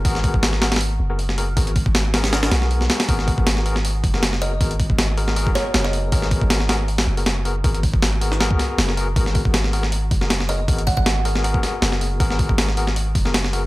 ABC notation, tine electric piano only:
X:1
M:4/4
L:1/16
Q:"Swing 16ths" 1/4=158
K:G#m
V:1 name="Tine electric piano"
[B,FGA]6 [B,FGA] z4 [B,FGA] z2 [B,FGA] z | [B,FGA]2 z4 [B,FGA]2 [B,FGA]8 | [B,FGA]6 [B,FGA] z4 [B,FGA] z2 [B,FGA] z | [B,FGA]2 z4 [B,FGA]2 [B,FGA]8 |
[B,FGA]6 [B,FGA] z4 [B,FGA] z2 [B,FGA] z | [B,FGA]2 z4 [B,FGA]2 [B,FGA]6 [B,FGA] z | [B,FGA]6 [B,FGA] z4 [B,FGA] z2 [B,FGA] z | [B,FGA]2 z4 [B,FGA]2 [B,FGA]8 |
[B,FGA]6 [B,FGA] z4 [B,FGA] z2 [B,FGA] z |]